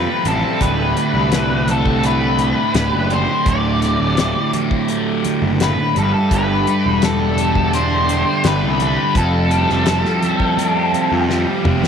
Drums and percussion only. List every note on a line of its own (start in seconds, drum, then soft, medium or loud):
0.07 high conga medium
0.24 closed hi-hat medium
0.24 low conga medium
0.61 kick loud
0.61 closed hi-hat medium
0.97 closed hi-hat medium
1.32 snare loud
1.32 closed hi-hat medium
1.49 high conga medium
1.67 closed hi-hat medium
1.67 low conga medium
1.85 kick medium
2.03 closed hi-hat medium
2.38 closed hi-hat medium
2.38 low conga medium
2.74 snare loud
2.74 closed hi-hat medium
2.93 high conga medium
3.10 closed hi-hat medium
3.10 low conga medium
3.46 kick loud
3.46 closed hi-hat medium
3.82 snare soft
3.82 closed hi-hat medium
4.17 snare loud
4.17 closed hi-hat medium
4.36 high conga medium
4.53 closed hi-hat medium
4.53 low conga medium
4.71 kick medium
4.88 closed hi-hat medium
5.24 closed hi-hat medium
5.24 low conga medium
5.60 snare loud
5.60 closed hi-hat medium
5.77 high conga medium
5.94 closed hi-hat medium
5.94 low conga medium
6.31 kick loud
6.31 closed hi-hat medium
6.67 closed hi-hat medium
7.02 snare loud
7.02 closed hi-hat medium
7.20 high conga medium
7.37 closed hi-hat medium
7.37 low conga medium
7.55 kick medium
7.73 closed hi-hat medium
8.09 closed hi-hat medium
8.44 snare loud
8.44 closed hi-hat medium
8.61 high conga medium
8.80 closed hi-hat medium
8.80 low conga medium
9.15 kick loud
9.15 closed hi-hat medium
9.51 closed hi-hat medium
9.70 snare soft
9.86 snare loud
9.86 closed hi-hat medium
10.05 snare soft
10.05 high conga medium
10.22 closed hi-hat medium
10.22 low conga medium
10.40 kick medium
10.57 closed hi-hat medium
10.57 high conga medium
10.57 low conga medium
10.92 closed hi-hat medium
10.92 low conga medium
11.30 snare medium
11.47 high conga soft
11.64 mid tom medium
11.64 low conga medium
11.82 snare medium
11.82 low conga medium